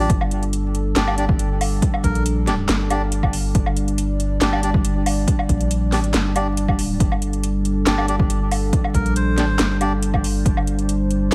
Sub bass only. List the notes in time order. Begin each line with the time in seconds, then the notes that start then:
0.10 G1
0.96 G1
2.04 A#1
2.68 G1
3.55 G1
4.41 G1
5.49 A#1
5.94 A1
6.14 G1
7.00 G1
7.87 G1
8.94 A#1
9.39 A1
9.59 G1
10.46 G1